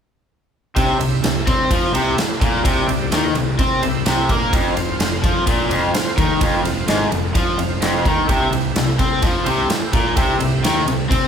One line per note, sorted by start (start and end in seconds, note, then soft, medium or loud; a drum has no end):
0.76 0.98 C2 medium
0.76 0.99 C3 loud
0.76 1.41 E4 medium
0.76 1.41 G4 medium
0.76 1.41 C5 medium
0.76 1.42 E5 medium
0.76 kick medium
0.76 ride medium
1.00 1.22 C2 medium
1.00 1.19 C3 medium
1.00 ride medium
1.23 1.46 C2 medium
1.23 1.42 C3 medium
1.23 snare loud
1.23 ride medium
1.47 1.69 C3 medium
1.47 1.70 C4 medium
1.47 kick loud
1.47 ride medium
1.70 1.92 F2 medium
1.70 1.93 F3 loud
1.70 kick loud
1.70 ride medium
1.93 2.16 C2 medium
1.93 2.17 C3 loud
1.93 2.42 E4 medium
1.93 2.42 G4 medium
1.93 2.43 C5 medium
1.93 2.43 E5 medium
1.93 ride medium
2.18 muted fingered electric bass stroke soft
2.18 muted overdriven electric guitar stroke medium
2.18 snare loud
2.18 ride medium
2.41 2.63 A#1 loud
2.41 2.64 A#2 loud
2.41 kick loud
2.41 ride medium
2.63 2.87 C2 medium
2.63 2.87 C3 loud
2.63 3.29 E4 medium
2.63 3.29 G4 medium
2.63 3.29 C5 medium
2.63 3.30 D5 medium
2.63 kick loud
2.63 ride medium
2.88 3.10 C2 medium
2.88 3.07 C3 medium
2.88 ride medium
3.12 3.34 D#2 medium
3.12 3.35 D#3 medium
3.12 snare loud
3.12 ride medium
3.35 3.57 C2 medium
3.35 3.54 C3 medium
3.35 ride medium
3.59 3.81 C3 medium
3.59 3.82 C4 loud
3.59 kick loud
3.59 ride medium
3.82 4.04 C2 medium
3.82 4.01 C3 medium
3.82 4.31 E4 medium
3.82 4.31 G4 medium
3.82 4.31 C5 medium
3.82 4.32 E5 medium
3.82 ride medium
4.05 4.28 C2 medium
4.05 4.29 C3 loud
4.05 snare loud
4.05 ride medium
4.29 4.51 A#2 medium
4.29 4.52 A#3 medium
4.29 kick loud
4.29 ride medium
4.51 4.75 F1 medium
4.51 4.75 F2 loud
4.51 5.17 C4 medium
4.51 5.18 F4 medium
4.51 5.17 C5 medium
4.51 5.18 F5 medium
4.51 kick loud
4.51 ride medium
4.76 4.98 F1 medium
4.76 4.95 F2 medium
4.76 snare soft
4.76 ride medium
4.99 5.22 F1 medium
4.99 5.18 F2 medium
4.99 snare loud
4.99 ride medium
5.23 5.45 F2 medium
5.23 5.46 F3 loud
5.23 kick loud
5.23 ride medium
5.47 5.69 A#1 medium
5.47 5.70 A#2 loud
5.47 kick loud
5.47 ride medium
5.68 5.92 F1 medium
5.68 5.92 F2 loud
5.68 6.18 C4 medium
5.68 6.18 F4 medium
5.68 6.18 C5 medium
5.68 6.19 F5 loud
5.68 ride medium
5.94 muted overdriven electric guitar stroke medium
5.94 muted fingered electric bass stroke soft
5.94 snare loud
5.94 ride loud
6.17 6.39 D#2 medium
6.17 6.40 D#3 loud
6.17 kick loud
6.17 ride medium
6.39 6.63 F1 medium
6.39 6.63 F2 loud
6.39 7.05 C4 medium
6.39 7.06 F4 medium
6.39 7.06 C5 medium
6.39 7.06 F5 medium
6.39 kick loud
6.39 ride medium
6.64 6.86 F1 medium
6.64 6.83 F2 medium
6.64 snare soft
6.64 ride medium
6.88 7.10 G#1 medium
6.88 7.11 G#2 loud
6.88 snare loud
6.88 ride medium
7.12 7.33 F1 medium
7.12 7.30 F2 medium
7.12 ride medium
7.34 7.57 F2 medium
7.34 7.57 F3 loud
7.34 kick loud
7.34 ride medium
7.57 7.80 F1 medium
7.57 7.77 F2 medium
7.57 8.06 C4 medium
7.57 8.07 F4 medium
7.57 8.07 C5 medium
7.57 8.07 F5 medium
7.57 ride medium
7.81 8.04 F1 medium
7.81 8.04 F2 medium
7.81 snare loud
7.81 ride medium
8.05 8.27 D#2 medium
8.05 8.28 D#3 loud
8.05 kick loud
8.05 ride medium
8.27 8.51 C2 medium
8.27 8.51 C3 loud
8.27 8.93 E4 medium
8.27 8.93 G4 medium
8.27 8.94 C5 medium
8.27 8.94 E5 medium
8.27 kick medium
8.27 ride medium
8.52 8.74 C2 medium
8.52 8.71 C3 medium
8.52 ride medium
8.75 8.97 C2 medium
8.75 8.95 C3 medium
8.75 snare loud
8.75 ride medium
8.99 9.21 C3 medium
8.99 9.22 C4 loud
8.99 kick loud
8.99 ride medium
9.22 9.45 F2 medium
9.22 9.45 F3 loud
9.22 kick loud
9.22 ride medium
9.44 9.68 C2 medium
9.44 9.69 C3 medium
9.44 9.94 E4 medium
9.44 9.94 G4 medium
9.44 9.94 C5 medium
9.44 9.94 E5 medium
9.44 ride medium
9.70 muted overdriven electric guitar stroke medium
9.70 muted fingered electric bass stroke soft
9.70 snare loud
9.70 ride loud
9.93 10.15 A#1 medium
9.93 10.16 A#2 loud
9.93 kick loud
9.93 ride medium
10.16 10.38 C2 medium
10.16 10.38 C3 loud
10.16 10.81 E4 medium
10.16 10.81 G4 medium
10.16 10.82 C5 medium
10.16 10.82 E5 medium
10.16 kick loud
10.16 ride loud
10.39 10.62 C2 medium
10.39 10.58 C3 medium
10.39 ride medium
10.63 10.85 D#2 medium
10.63 10.86 D#3 medium
10.63 snare loud
10.63 ride loud
10.86 11.08 C2 medium
10.86 11.05 C3 medium
10.86 ride medium
11.10 11.28 C3 medium
11.10 11.28 C4 loud
11.10 kick loud
11.10 ride medium